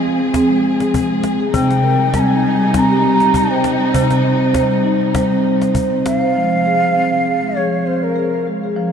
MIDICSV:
0, 0, Header, 1, 5, 480
1, 0, Start_track
1, 0, Key_signature, -4, "minor"
1, 0, Tempo, 601805
1, 1228, Time_signature, 4, 2, 24, 8
1, 7115, End_track
2, 0, Start_track
2, 0, Title_t, "Bansuri"
2, 0, Program_c, 0, 73
2, 1237, Note_on_c, 0, 79, 82
2, 1725, Note_on_c, 0, 82, 82
2, 1737, Note_off_c, 0, 79, 0
2, 1752, Note_on_c, 0, 80, 89
2, 1760, Note_off_c, 0, 82, 0
2, 2223, Note_on_c, 0, 82, 92
2, 2235, Note_off_c, 0, 80, 0
2, 2693, Note_on_c, 0, 79, 81
2, 2705, Note_off_c, 0, 82, 0
2, 3049, Note_off_c, 0, 79, 0
2, 4836, Note_on_c, 0, 77, 118
2, 6035, Note_on_c, 0, 73, 83
2, 6047, Note_off_c, 0, 77, 0
2, 6275, Note_on_c, 0, 72, 68
2, 6287, Note_off_c, 0, 73, 0
2, 6407, Note_on_c, 0, 70, 61
2, 6419, Note_off_c, 0, 72, 0
2, 6751, Note_off_c, 0, 70, 0
2, 7115, End_track
3, 0, Start_track
3, 0, Title_t, "Marimba"
3, 0, Program_c, 1, 12
3, 34, Note_on_c, 1, 60, 75
3, 260, Note_off_c, 1, 60, 0
3, 268, Note_on_c, 1, 68, 73
3, 270, Note_on_c, 1, 60, 92
3, 391, Note_on_c, 1, 56, 70
3, 399, Note_off_c, 1, 68, 0
3, 633, Note_on_c, 1, 68, 70
3, 635, Note_off_c, 1, 56, 0
3, 876, Note_off_c, 1, 68, 0
3, 883, Note_on_c, 1, 56, 69
3, 1116, Note_on_c, 1, 68, 74
3, 1120, Note_off_c, 1, 56, 0
3, 1196, Note_off_c, 1, 60, 0
3, 1224, Note_on_c, 1, 60, 72
3, 1226, Note_off_c, 1, 68, 0
3, 1228, Note_on_c, 1, 48, 116
3, 1462, Note_on_c, 1, 70, 73
3, 1465, Note_off_c, 1, 60, 0
3, 1675, Note_off_c, 1, 48, 0
3, 1704, Note_off_c, 1, 70, 0
3, 1711, Note_on_c, 1, 60, 80
3, 1712, Note_on_c, 1, 55, 87
3, 1944, Note_off_c, 1, 55, 0
3, 1949, Note_off_c, 1, 60, 0
3, 1954, Note_on_c, 1, 55, 72
3, 2175, Note_off_c, 1, 55, 0
3, 2185, Note_on_c, 1, 55, 78
3, 2191, Note_on_c, 1, 60, 80
3, 2315, Note_on_c, 1, 67, 77
3, 2319, Note_off_c, 1, 60, 0
3, 2549, Note_on_c, 1, 60, 66
3, 2555, Note_off_c, 1, 67, 0
3, 2792, Note_off_c, 1, 60, 0
3, 2795, Note_on_c, 1, 72, 69
3, 3030, Note_on_c, 1, 60, 64
3, 3034, Note_off_c, 1, 72, 0
3, 3111, Note_off_c, 1, 55, 0
3, 3142, Note_off_c, 1, 60, 0
3, 3142, Note_on_c, 1, 72, 80
3, 3143, Note_on_c, 1, 48, 104
3, 3382, Note_off_c, 1, 72, 0
3, 3389, Note_on_c, 1, 60, 70
3, 3591, Note_off_c, 1, 48, 0
3, 3622, Note_on_c, 1, 55, 83
3, 3626, Note_off_c, 1, 60, 0
3, 3631, Note_on_c, 1, 72, 75
3, 3862, Note_on_c, 1, 63, 69
3, 3867, Note_off_c, 1, 72, 0
3, 4070, Note_off_c, 1, 55, 0
3, 4102, Note_off_c, 1, 63, 0
3, 4103, Note_on_c, 1, 55, 85
3, 4105, Note_on_c, 1, 72, 82
3, 4231, Note_on_c, 1, 60, 71
3, 4234, Note_off_c, 1, 72, 0
3, 4472, Note_off_c, 1, 60, 0
3, 4477, Note_on_c, 1, 72, 61
3, 4708, Note_on_c, 1, 60, 65
3, 4715, Note_off_c, 1, 72, 0
3, 4950, Note_off_c, 1, 60, 0
3, 4953, Note_on_c, 1, 72, 72
3, 5031, Note_off_c, 1, 55, 0
3, 5063, Note_off_c, 1, 72, 0
3, 5070, Note_on_c, 1, 56, 61
3, 5074, Note_on_c, 1, 53, 83
3, 5306, Note_off_c, 1, 56, 0
3, 5309, Note_on_c, 1, 68, 59
3, 5541, Note_on_c, 1, 60, 62
3, 5546, Note_off_c, 1, 68, 0
3, 5782, Note_off_c, 1, 60, 0
3, 5786, Note_on_c, 1, 68, 53
3, 5916, Note_off_c, 1, 68, 0
3, 5917, Note_on_c, 1, 56, 52
3, 5998, Note_off_c, 1, 53, 0
3, 6025, Note_off_c, 1, 56, 0
3, 6027, Note_on_c, 1, 68, 71
3, 6030, Note_on_c, 1, 53, 69
3, 6250, Note_off_c, 1, 53, 0
3, 6264, Note_on_c, 1, 60, 50
3, 6266, Note_off_c, 1, 68, 0
3, 6504, Note_on_c, 1, 68, 64
3, 6505, Note_off_c, 1, 60, 0
3, 6745, Note_off_c, 1, 68, 0
3, 6757, Note_on_c, 1, 56, 53
3, 6882, Note_off_c, 1, 56, 0
3, 6888, Note_on_c, 1, 68, 56
3, 6988, Note_on_c, 1, 53, 85
3, 7115, Note_off_c, 1, 53, 0
3, 7115, Note_off_c, 1, 68, 0
3, 7115, End_track
4, 0, Start_track
4, 0, Title_t, "String section"
4, 0, Program_c, 2, 48
4, 0, Note_on_c, 2, 53, 63
4, 0, Note_on_c, 2, 60, 67
4, 0, Note_on_c, 2, 68, 74
4, 1192, Note_off_c, 2, 60, 0
4, 1193, Note_off_c, 2, 53, 0
4, 1193, Note_off_c, 2, 68, 0
4, 1217, Note_on_c, 2, 55, 65
4, 1222, Note_on_c, 2, 63, 81
4, 1223, Note_on_c, 2, 48, 70
4, 5025, Note_off_c, 2, 55, 0
4, 5028, Note_off_c, 2, 48, 0
4, 5028, Note_off_c, 2, 63, 0
4, 7115, End_track
5, 0, Start_track
5, 0, Title_t, "Cajon"
5, 272, Note_on_c, 9, 36, 53
5, 272, Note_on_c, 9, 38, 48
5, 352, Note_off_c, 9, 36, 0
5, 352, Note_off_c, 9, 38, 0
5, 641, Note_on_c, 9, 38, 43
5, 721, Note_off_c, 9, 38, 0
5, 752, Note_on_c, 9, 36, 53
5, 831, Note_off_c, 9, 36, 0
5, 985, Note_on_c, 9, 38, 50
5, 1065, Note_off_c, 9, 38, 0
5, 1228, Note_on_c, 9, 36, 56
5, 1308, Note_off_c, 9, 36, 0
5, 1360, Note_on_c, 9, 38, 45
5, 1440, Note_off_c, 9, 38, 0
5, 1704, Note_on_c, 9, 36, 49
5, 1704, Note_on_c, 9, 38, 49
5, 1784, Note_off_c, 9, 36, 0
5, 1784, Note_off_c, 9, 38, 0
5, 2187, Note_on_c, 9, 36, 54
5, 2187, Note_on_c, 9, 38, 50
5, 2266, Note_off_c, 9, 36, 0
5, 2266, Note_off_c, 9, 38, 0
5, 2316, Note_on_c, 9, 38, 17
5, 2396, Note_off_c, 9, 38, 0
5, 2554, Note_on_c, 9, 38, 44
5, 2634, Note_off_c, 9, 38, 0
5, 2665, Note_on_c, 9, 36, 56
5, 2745, Note_off_c, 9, 36, 0
5, 2905, Note_on_c, 9, 38, 53
5, 2984, Note_off_c, 9, 38, 0
5, 3146, Note_on_c, 9, 36, 60
5, 3226, Note_off_c, 9, 36, 0
5, 3274, Note_on_c, 9, 38, 45
5, 3353, Note_off_c, 9, 38, 0
5, 3625, Note_on_c, 9, 36, 51
5, 3625, Note_on_c, 9, 38, 53
5, 3704, Note_off_c, 9, 36, 0
5, 3704, Note_off_c, 9, 38, 0
5, 3758, Note_on_c, 9, 38, 18
5, 3838, Note_off_c, 9, 38, 0
5, 3997, Note_on_c, 9, 38, 17
5, 4077, Note_off_c, 9, 38, 0
5, 4104, Note_on_c, 9, 36, 58
5, 4104, Note_on_c, 9, 38, 52
5, 4184, Note_off_c, 9, 36, 0
5, 4184, Note_off_c, 9, 38, 0
5, 4344, Note_on_c, 9, 38, 16
5, 4424, Note_off_c, 9, 38, 0
5, 4479, Note_on_c, 9, 38, 45
5, 4559, Note_off_c, 9, 38, 0
5, 4584, Note_on_c, 9, 36, 54
5, 4664, Note_off_c, 9, 36, 0
5, 4831, Note_on_c, 9, 38, 59
5, 4911, Note_off_c, 9, 38, 0
5, 4962, Note_on_c, 9, 38, 18
5, 5042, Note_off_c, 9, 38, 0
5, 7115, End_track
0, 0, End_of_file